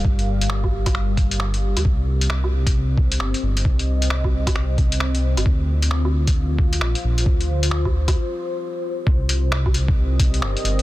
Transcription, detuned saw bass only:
X:1
M:4/4
L:1/16
Q:"Swing 16ths" 1/4=133
K:Cm
V:1 name="Detuned saw bass" clef=bass
G,,,6 G,,,4 G,,,4- G,,, D,, | C,,6 C,,6 G,,, z G,,,2 | C,,6 C,,4 C,,4- C,, G,,, | D,,6 D,,6 B,,, z B,,,2 |
D,,6 D,,2 z8 | C,,6 C,,6 G,,, z G,,,2 |]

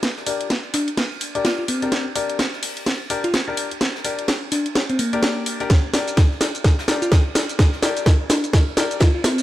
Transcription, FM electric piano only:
X:1
M:4/4
L:1/16
Q:"Swing 16ths" 1/4=127
K:Gm
V:1 name="FM electric piano"
z6 D z4 z F F C2- | C z8 z2 F z4 | z6 D z2 C B,6 | z8 z3 F z4 |
z6 D z4 z F F C2 |]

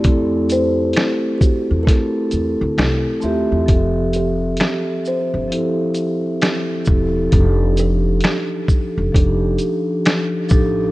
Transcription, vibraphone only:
X:1
M:4/4
L:1/8
Q:"Swing 16ths" 1/4=66
K:F
V:1 name="Vibraphone"
[A,CEA]3 z [A,CEA]2 z [A,CGe] | [F,CGAe]3 z [F,CEGA]2 z [F,CEGA] | [F,D_EGA]3 z [F,DEGA]2 z [F,DEGA] |]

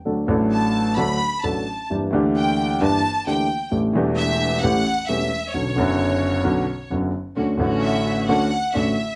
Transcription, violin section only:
X:1
M:4/4
L:1/8
Q:1/4=131
K:D
V:1 name="Violin section"
z2 a2 b2 a2 | z2 g2 a2 g2 | z2 e2 f2 e2 | c6 z2 |
z2 e2 f2 e2 |]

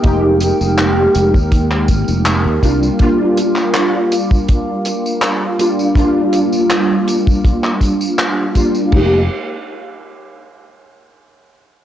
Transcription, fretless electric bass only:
X:1
M:4/4
L:1/16
Q:"Swing 16ths" 1/4=81
K:Fdor
V:1 name="Fretless electric bass" clef=bass
F,,,2 z F,,,2 z F,,, E,,3 A,,, F,,,2 E,, C,, z | z16 | z16 | F,,,2 z12 z2 |]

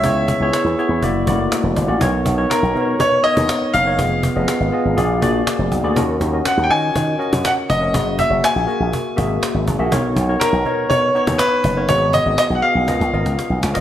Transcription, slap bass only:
X:1
M:4/4
L:1/16
Q:1/4=121
K:F#
V:1 name="Slap bass" clef=bass
C,,3 C,, z =E,, z E,, F,,,2 F,,,2 z =E,,, =G,,, =A,,, | B,,,2 B,,,2 z B,,, B,,2 B,,2 z D,, z2 F,,,2 | =F,,,3 F,,, z _A,,, z A,,, ^A,,,2 A,,,2 z E,,, B,,, =D,, | D,,2 D,,2 z D,, D,2 D,2 z F,, z2 E,,,2 |
F,,,3 F,,, z A,,, z A,,, z2 G,,,2 z G,,, G,,, A,,, | B,,,2 B,,,2 z B,,, B,,2 B,,2 z D,, z2 F,,,2 | G,,,3 G,,, z B,,, z B,,, C,, C,, G,,, C,, z B,,, C,, E,,, |]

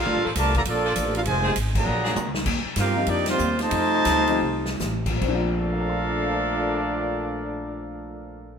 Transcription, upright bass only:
X:1
M:4/4
L:1/8
Q:"Swing" 1/4=181
K:Bb
V:1 name="Upright bass" clef=bass
(3D,, B,,, A,,, C,,2 B,,,2 A,,,2 | F,,,2 _A,,,2 B,,,2 ^C,,2 | E,, z G,,2 F,,2 E,,2 | F,,2 D,,2 C,,2 A,,,2 |
B,,,8- | B,,,8 |]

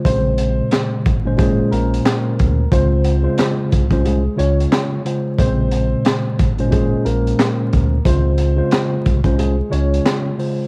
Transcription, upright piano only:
X:1
M:4/4
L:1/16
Q:"Swing 16ths" 1/4=90
K:Bbm
V:1 name="Upright piano"
[Cc]4- [Cc] z3 [A,A]2 [B,B]6 | [Cc]4- [Cc] z3 [A,A]2 [Dd]3 z3 | [Cc]4- [Cc] z3 [A,A]2 [B,B]6 | [Cc]4- [Cc] z3 [A,A]2 [Dd]3 z3 |]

